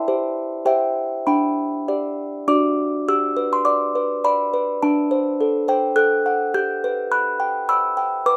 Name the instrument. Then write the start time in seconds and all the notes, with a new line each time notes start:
music box
Already playing: E5 A5
0.08 G4 C5
0.66 G4 C5 E5 G5
1.27 D4 G5 B5
1.88 G4 D5
2.48 D4 F#4 D5 D6
3.08 G4 E6
3.37 B4
3.53 C6
3.65 D5 D6
3.95 B4
4.24 D5 B5
4.54 B4
4.83 D4 A5
5.11 C5
5.41 A4
5.68 C5 G5
5.96 A4 F#6
6.26 F#5
6.54 G4 G6
6.84 B4
7.12 B5 F#6
7.40 G5
7.69 B5 E6
7.97 G5
8.26 B4 D6